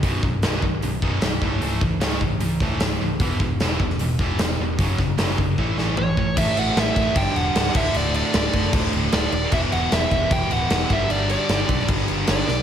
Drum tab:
CC |----------------|----------------|----------------|----------------|
HH |o---o---o---o---|o---o---o---o---|o---o---o---o---|o---o-----------|
SD |----o-------o---|----o-------o---|----o--o----o---|--o-o-----o-----|
T2 |----------------|----------------|----------------|------------o---|
BD |o-o---o---o---o-|--o---o---o-----|o-o---o---o-----|o-o---o-o-----o-|

CC |x-x-x-x-x-x-x-x-|x-x-x-x-x-x-x-x-|x-x-x-x-x-x-x-x-|x-x-x-x-x-x-x---|
HH |----------------|----------------|----------------|----------------|
SD |----o-------o---|----o--o----o---|----o-------o---|----o--o----o-o-|
T2 |----------------|----------------|----------------|----------------|
BD |o-----o-o-----o-|------o-o-------|o-----o-o-----o-|------o-o-------|